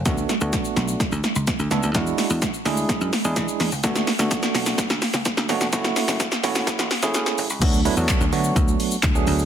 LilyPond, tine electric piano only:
\new Staff \with { instrumentName = "Tine electric piano" } { \time 4/4 \key d \lydian \tempo 4 = 127 <a b d' fis'>8 r16 <a b d' fis'>4. r4 r16 <a b d' a'>8 | <gis d' e' fis'>4~ <gis d' e' fis'>16 r16 <gis d' e' gis'>4 r16 <gis d' e' gis'>4 r16 | <a b d' fis'>8 r16 <a b d' fis'>4. r4 r16 <a b d' fis'>8 | <a cis' e' fis'>4~ <a cis' e' fis'>16 r16 <a cis' e' fis'>4 r16 <a cis' e' gis'>4 r16 |
<fis a b d' fis'>8 <fis a b d' e'>16 <fis a b d' fis'>8 r16 <fis a b d' fis'>4~ <fis a b d' fis'>16 r8 <fis a b d' gis'>8 r16 | }